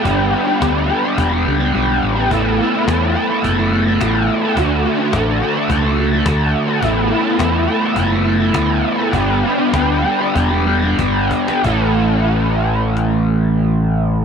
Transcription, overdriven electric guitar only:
X:1
M:4/4
L:1/16
Q:1/4=106
K:Amix
V:1 name="Overdriven electric guitar"
[G,B,DG]2 [G,B,DG] [B,DG] [G,B,DG]2 [G,B,DG] [B,DG] [G,B,DG] [B,DG] [G,B,DG] [B,DG] [G,B,DG]3 [B,DG] | [A,B,EA]2 [A,B,EA] [B,EA] [A,B,EA]2 [A,B,EA] [B,EA] [A,B,EA] [B,EA] [A,B,EA] [B,EA] [A,B,EA]3 [B,EA] | [D,A,DFA]2 [A,DFA] [DFA] [D,A,DFA]2 [A,DFA] [DFA] [A,DFA] [DFA] [A,DFA] [DFA] [D,A,DFA]3 [DFA] | [A,B,EA]2 [A,B,EA] [B,EA] [A,B,EA]2 [A,B,EA] [B,EA] [A,B,EA] [B,EA] [A,B,EA] [B,EA] [A,B,EA]3 [B,EA] |
[G,B,DG]2 [G,B,DG] [B,DG] [G,B,DG]2 [G,B,DG] [B,DG] [G,B,DG] [B,DG] [G,B,DG] [B,DG] [G,B,DG]3 [B,DG] | [A,,E,A,CEA]16 |]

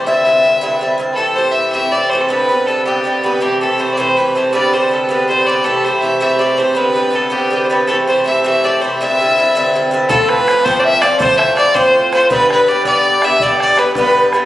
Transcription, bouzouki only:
X:1
M:6/8
L:1/8
Q:3/8=108
K:C
V:1 name="Bouzouki" clef=bass
[G,,D,CE] [G,,D,CE] [G,,D,CE] [G,,D,CE] [G,,D,CE] [G,,D,CE] | [A,,E,CG] [A,,E,CG] [A,,E,CG] [A,,E,CG] [A,,E,CG] [A,,E,CG] | [G,,D,B,G] [G,,D,B,G] [G,,D,B,G] [G,,D,B,G] [G,,D,B,G] [G,,D,B,G] | [C,E,A,G] [C,E,A,G] [C,E,A,G] [C,E,A,G] [C,E,A,G] [C,E,A,G] |
[G,,D,B,G] [G,,D,B,G] [G,,D,B,G] [G,,D,B,G] [G,,D,B,G] [G,,D,B,G] | [C,E,A,G] [C,E,A,G] [C,E,A,G] [C,E,A,G] [C,E,A,G] [C,E,A,G] | [G,,D,B,G] [G,,D,B,G] [G,,D,B,G] [G,,D,B,G] [G,,D,B,G] [G,,D,B,G] | [C,E,A,G] [C,E,A,G] [C,E,A,G] [C,E,A,G] [C,E,A,G] [C,E,A,G] |
[G,,D,CE] [G,,D,CE] [G,,D,CE] [G,,D,CE] [G,,D,CE] [G,,D,CE] | [A,,F,CF]2 [A,,F,CF] [A,,F,CF]2 [A,,F,CF] | [A,,F,CF]2 [A,,F,CF] [A,,F,CF]2 [A,,F,CF] | [G,,D,B,G]2 [G,,D,B,G] [G,,D,B,G]2 [G,,D,B,G] |
[G,,D,B,G]2 [G,,D,B,G] [G,,D,B,G]2 [G,,D,B,G] |]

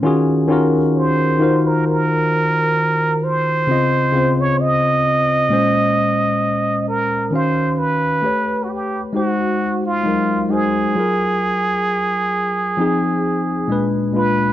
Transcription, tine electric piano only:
X:1
M:4/4
L:1/8
Q:"Swing 16ths" 1/4=66
K:Ebdor
V:1 name="Tine electric piano"
[E,DFGA] [E,DFGB]2 [E,EFGBc]3 z2 | [D,CFe] [D,CFc]3 [B,,A,Dc]3 z | [E,DGf]2 [=A,=G=B^c]2 [_A,E_G=c]2 [G,A,E_B] [A,EGc] | [G,FAB]3 z [F,CEA]2 [B,,A,=D_c] [B,,A,DF] |]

